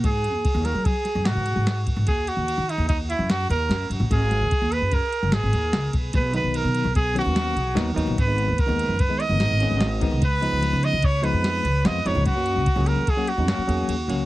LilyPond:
<<
  \new Staff \with { instrumentName = "Trumpet" } { \time 5/4 \key gis \minor \tempo 4 = 147 gis'4. ais'8 gis'4 fis'4. r8 | gis'8 fis'4 dis'8 dis'8 e'8 fis'8 ais'4 r8 | gis'4. b'8 ais'4 gis'4. r8 | b'8 b'8 ais'4 gis'8 fis'2 r8 |
b'4 ais'4 b'8 dis''2 r8 | b'4. dis''8 cis''8 b'4. dis''8 cis''8 | fis'4. ais'8 gis'8 fis'2 r8 | }
  \new Staff \with { instrumentName = "Tine electric piano" } { \time 5/4 \key gis \minor r1 r4 | r1 r4 | r1 r4 | r8 <dis fis b dis'>4~ <dis fis b dis'>16 r8. <dis fis b cis'>4 r8 <dis fis b dis'>16 r16 <dis fis b dis'>8 |
r16 <dis gis b dis'>8. r16 <dis gis b dis'>8. r16 <dis gis b dis'>16 r16 <dis gis b dis'>16 <dis gis b dis'>16 r16 <dis gis b cis'>8. r16 <dis gis b dis'>8 | r8 <eis gis b dis'>4~ <eis gis b dis'>16 r8. <eis gis b dis'>4 r8 <eis gis b eis'>16 r16 <eis gis b dis'>8 | r16 <fis ais cis' fis'>8. r16 <fis ais cis' gis'>8. r16 <fis ais cis' fis'>16 r16 <fis ais cis' dis'>16 <fis ais cis' fis'>16 r16 <fis ais cis' gis'>8. r16 <fis ais cis' fis'>8 | }
  \new Staff \with { instrumentName = "Upright bass" } { \clef bass \time 5/4 \key gis \minor gis,8. dis,16 r16 dis,8 fis8 r8 fis,16 gis,16 gis,8 gis,4 gis,16 | dis,8. dis,8 dis8 dis,4 fis,8. dis,8 fis,8 fis,16 ais,,16 | gis,,8. dis,16 r16 dis,8 fis,8 r8 fis,,16 gis,,16 gis,,16 dis,8 cis,8 b,,8 | b,,8. b,,8 b,8 b,,4 dis,8. b,,8 dis,8 dis,16 ais,,16 |
gis,,8. dis,16 r16 dis,8 fis,8 r8 fis,,16 gis,,16 gis,,8 gis,,4 c,16 | cis,8. cis,8 cis8 cis,4 eis,8. cis,8 eis,8 eis,16 cis,16 | fis,8. cis,16 r16 cis,8 dis8 r8 dis,16 fis,16 fis,16 e,8 dis,8 cis,8 | }
  \new DrumStaff \with { instrumentName = "Drums" } \drummode { \time 5/4 <bd cymr>8 cymr8 <bd cymr>8 <cymr sn>8 <bd cymr>8 <cymr sn>8 <cymr sn>8 cymr8 <cymr sn>8 <bd cymr>8 | <bd cymr>8 cymr8 cymr8 cymr8 <bd cymr sn>8 cymr8 <cymr sn>8 cymr8 <cymr sn>8 cymr8 | <bd cymr>8 <cymr sn>8 <bd cymr>8 cymr8 <bd cymr>8 cymr8 <cymr sn>8 <cymr sn>8 <cymr sn>8 <bd cymr>8 | <bd cymr>8 cymr8 cymr8 cymr8 <bd cymr sn>8 cymr8 <cymr sn>8 cymr8 <cymr sn>8 cymr8 |
<bd cymr>8 cymr8 <bd cymr>8 cymr8 <bd cymr>8 cymr8 <cymr sn>8 cymr8 <cymr sn>8 <bd cymr>8 | <bd cymr>8 cymr8 <cymr sn>8 cymr8 <bd cymr>8 cymr8 <cymr sn>8 cymr8 <cymr sn>8 cymr8 | <bd cymr>8 cymr8 <bd cymr>8 <cymr sn>8 <bd cymr>8 cymr8 <cymr sn>8 cymr8 cymr8 cymr8 | }
>>